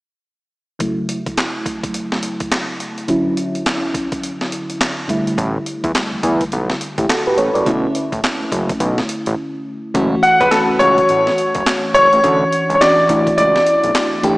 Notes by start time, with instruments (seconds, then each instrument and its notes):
0.79 fm electric piano C#3 F#3 A3 E4, kick, closed hi-hat
1.09 closed hi-hat
1.26 kick, closed hi-hat
1.37 snare, clap, closed hi-hat
1.66 kick, closed hi-hat
1.83 kick, closed hi-hat
1.94 closed hi-hat
2.12 snare
2.23 closed hi-hat
2.40 kick, closed hi-hat
2.52 snare, clap, closed hi-hat
2.80 closed hi-hat
2.98 closed hi-hat
3.08 fm electric piano D3 F#3 C#4 E4, kick, closed hi-hat
3.37 closed hi-hat
3.55 closed hi-hat
3.66 snare, clap, closed hi-hat
3.94 kick, closed hi-hat
4.12 kick, closed hi-hat
4.23 closed hi-hat
4.41 snare
4.52 closed hi-hat
4.70 closed hi-hat
4.81 snare, clap, closed hi-hat
5.08 fm electric piano D3 G3 A3 E4, kick, closed hi-hat
5.27 closed hi-hat
5.38 analog synth bass A1, kick, closed hi-hat
5.66 closed hi-hat
5.84 analog synth bass E2, kick, closed hi-hat
5.95 snare, clap, closed hi-hat
6.12 analog synth bass E2
6.23 analog synth bass E2, kick, closed hi-hat
6.41 kick, closed hi-hat
6.52 analog synth bass B1, closed hi-hat
6.70 snare
6.81 closed hi-hat
6.98 analog synth bass A1, fm electric piano E4 G4, kick, closed hi-hat
7.09 fm electric piano F#4 A4, snare, clap, closed hi-hat
7.27 fm electric piano G4 B4
7.38 analog synth bass A1, fm electric piano A4 C#5, closed hi-hat
7.54 analog synth bass F#1, fm electric piano B4 D5, closed hi-hat
7.65 analog synth bass B1, fm electric piano D3 A3 C#4 E4, kick, closed hi-hat
7.95 closed hi-hat
8.12 analog synth bass A1, kick, closed hi-hat
8.24 snare, clap, closed hi-hat
8.41 analog synth bass F#1
8.52 analog synth bass F#1, kick, closed hi-hat
8.69 kick, closed hi-hat
8.80 analog synth bass B1, kick, closed hi-hat
8.98 snare
9.09 closed hi-hat
9.26 analog synth bass A1, closed hi-hat
9.94 analog synth bass F#1, fm electric piano E3 A3 C#4 F#4, kick, closed hi-hat
10.23 grand piano F#5, closed hi-hat
10.41 analog synth bass C#2, grand piano B4, kick, closed hi-hat
10.51 fm electric piano E3 A3 C#4 F#4, grand piano A4, snare, clap, closed hi-hat
10.70 analog synth bass C#2
10.79 analog synth bass C#2, fm electric piano E3 A3 C#4 F#4, grand piano C#5, kick, closed hi-hat
10.98 kick, closed hi-hat
11.09 analog synth bass A1, closed hi-hat
11.27 snare
11.38 closed hi-hat
11.55 analog synth bass F#1, kick, closed hi-hat
11.66 snare, clap, closed hi-hat
11.94 analog synth bass F#1, grand piano C#5, closed hi-hat
12.13 analog synth bass A1, closed hi-hat
12.23 analog synth bass D2, fm electric piano E3 C#4 D4 F#4, kick, closed hi-hat
12.53 closed hi-hat
12.69 analog synth bass C#2, closed hi-hat
12.75 grand piano C#5
12.81 fm electric piano E3 C#4 D4 F#4, grand piano D5, snare, clap, closed hi-hat
12.98 analog synth bass A1
13.09 analog synth bass A1, fm electric piano E3 A3 D4 E4, kick, closed hi-hat
13.27 kick, closed hi-hat
13.38 analog synth bass C#2, grand piano D5, closed hi-hat
13.56 snare
13.67 closed hi-hat
13.84 analog synth bass B1, closed hi-hat
13.95 snare, clap, closed hi-hat
14.23 analog synth bass A1, fm electric piano E3 A3 D4 G4, kick, closed hi-hat